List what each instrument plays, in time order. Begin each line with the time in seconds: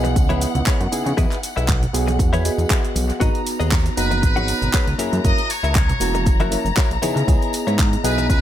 Already playing: analog synth bass B1, reed electric piano B3 E4 G#4 D#5, string section F#5
0.04 muted clean electric guitar stroke, closed hi-hat, tambourine, high conga, shaker
0.16 analog synth bass C#2, muted clean electric guitar stroke, kick, closed hi-hat, tambourine, shaker
0.29 reed electric piano B3 E4 B4 D#5, clean electric guitar E4 G#4 B4 C#5, closed hi-hat, tambourine, high conga
0.41 open hi-hat, tambourine, shaker
0.55 analog synth bass C#2, closed hi-hat, tambourine, low conga, shaker
0.66 clean electric guitar E4 G#4 B4 C#5, kick, clap, closed hi-hat, tambourine, shaker
0.81 analog synth bass F#2, closed hi-hat, tambourine
0.92 analog synth bass C#3, reed electric piano B3 D#4 E4 G#4, muted clean electric guitar stroke, open hi-hat, tambourine, shaker
1.06 analog synth bass C#3, closed hi-hat, tambourine, high conga, shaker
1.17 analog synth bass E2, reed electric piano B3 D#4 F#4 B4, clean electric guitar E4 G#4 B4 D#5, kick, closed hi-hat, tambourine, shaker
1.31 clap, closed hi-hat, tambourine, shaker
1.43 open hi-hat, tambourine, shaker
1.56 analog synth bass B1, clean electric guitar E4 G#4 B4 E5, closed hi-hat, tambourine, shaker
1.68 kick, clap, closed hi-hat, tambourine, low conga, shaker
1.82 muted clean electric guitar stroke, closed hi-hat, tambourine, low conga, shaker
1.93 analog synth bass B1, reed electric piano B3 F#4 G#4, open hi-hat, tambourine, shaker
2.07 muted clean electric guitar stroke, closed hi-hat, tambourine, high conga, shaker
2.19 analog synth bass E2, muted clean electric guitar stroke, kick, closed hi-hat, tambourine, shaker
2.33 clean electric guitar E4 G#4 B4 C#5, closed hi-hat, tambourine, high conga, shaker
2.44 reed electric piano B3 F#4 G#4 D#5, open hi-hat, tambourine, shaker
2.58 analog synth bass E2, closed hi-hat, tambourine, high conga, shaker
2.70 clean electric guitar E4 G#4 B4 F#5, kick, clap, closed hi-hat, tambourine, shaker
2.83 closed hi-hat, tambourine, shaker
2.95 analog synth bass B1, muted clean electric guitar stroke, open hi-hat, tambourine, high conga, shaker
3.09 closed hi-hat, tambourine, shaker
3.20 analog synth bass G#1, reed electric piano B3 D#4 F#4 A#5, clean electric guitar F#4 G#4 B4 D#5, string section A#5, kick, closed hi-hat, tambourine, shaker
3.35 closed hi-hat, tambourine
3.47 open hi-hat, tambourine, shaker
3.60 analog synth bass D#2, clean electric guitar F#4 G#4 B4 D#5, closed hi-hat, tambourine, shaker
3.72 kick, clap, closed hi-hat, tambourine, shaker
3.85 muted clean electric guitar stroke, closed hi-hat, tambourine, shaker
3.97 analog synth bass F#1, reed electric piano B3 D#4 F#4 A#5, trumpet section B4, open hi-hat, tambourine, shaker
4.11 muted clean electric guitar stroke, closed hi-hat, tambourine, high conga, shaker
4.22 analog synth bass G#1, trumpet section B4, muted clean electric guitar stroke, kick, closed hi-hat, tambourine, shaker
4.35 reed electric piano B3 D#4 F#4 C#5, clean electric guitar F#4 G#4 B4 F#5, closed hi-hat, tambourine, high conga
4.48 open hi-hat, tambourine, shaker
4.62 analog synth bass G#1, closed hi-hat, tambourine, low conga, shaker
4.73 clean electric guitar F#4 G#4 B4 C#5, kick, clap, closed hi-hat, tambourine, shaker
4.87 analog synth bass C#2, closed hi-hat, tambourine
4.98 analog synth bass F#2, reed electric piano A#3 C#4 E4 G#4, clean electric guitar E4 F#4 A#4 C#5, open hi-hat, tambourine, shaker
5.13 analog synth bass F#2, closed hi-hat, tambourine, high conga, shaker
5.24 analog synth bass F#1, reed electric piano A#3 C#4 E4 A#4, trumpet section D#5, kick, closed hi-hat, tambourine, shaker
5.38 closed hi-hat, tambourine
5.50 trumpet section C#5, open hi-hat, tambourine, shaker
5.63 analog synth bass C#2, clean electric guitar E4 F#4 A#4 E5, closed hi-hat, tambourine, shaker
5.75 trumpet section C#5, kick, clap, closed hi-hat, tambourine, low conga, shaker
5.89 muted clean electric guitar stroke, closed hi-hat, tambourine, low conga, shaker
6.00 analog synth bass E1, reed electric piano A#3 C#4 E4 F#4, open hi-hat, tambourine, shaker
6.14 muted clean electric guitar stroke, closed hi-hat, tambourine, high conga, shaker
6.26 analog synth bass F#1, muted clean electric guitar stroke, kick, closed hi-hat, tambourine, shaker
6.40 clean electric guitar E4 F#4 A#4 E5, closed hi-hat, tambourine, high conga
6.51 reed electric piano A#3 C#4 E4 A#4, open hi-hat, tambourine, shaker
6.65 analog synth bass F#1, closed hi-hat, tambourine, high conga, shaker
6.77 clean electric guitar E4 F#4 A#4 C#5, kick, clap, closed hi-hat, tambourine, shaker
6.91 analog synth bass A#1, closed hi-hat, tambourine
7.02 analog synth bass C#3, reed electric piano B3 D#4 E4 G#4, clean electric guitar E4 G#4 B4 C#5, open hi-hat, tambourine, high conga, shaker
7.16 analog synth bass C#3, closed hi-hat, tambourine, shaker
7.27 analog synth bass C#2, reed electric piano B3 E4 G#4 D#5, kick, closed hi-hat, tambourine, shaker
7.42 closed hi-hat, tambourine
7.53 open hi-hat, tambourine, shaker
7.67 analog synth bass G#2, clean electric guitar E4 G#4 B4 C#5, closed hi-hat, tambourine, shaker
7.79 kick, clap, closed hi-hat, tambourine, shaker
7.93 muted clean electric guitar stroke, closed hi-hat, tambourine, shaker
8.04 analog synth bass B1, reed electric piano B3 E4 G#4 D#5, trumpet section B4, open hi-hat, tambourine, shaker
8.18 muted clean electric guitar stroke, closed hi-hat, tambourine, high conga, shaker
8.29 analog synth bass C#2, trumpet section B4, muted clean electric guitar stroke, kick, closed hi-hat, tambourine, shaker